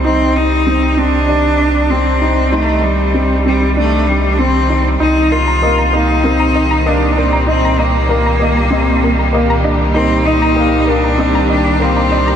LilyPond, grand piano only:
\new Staff \with { instrumentName = "Grand piano" } { \time 4/4 \key ees \major \tempo 4 = 97 ees'4 c'8 c'8 d'4 c'8 ees'8 | ees'4 c'8 c'8 d'4 c'8 ees'8 | ees'4 bes8 bes8 c'4 bes8 d'8 | ees'4 bes8 bes8 c'4 bes8 d'8 |
ees'4 bes8 bes8 c'4 bes8 d'8 | }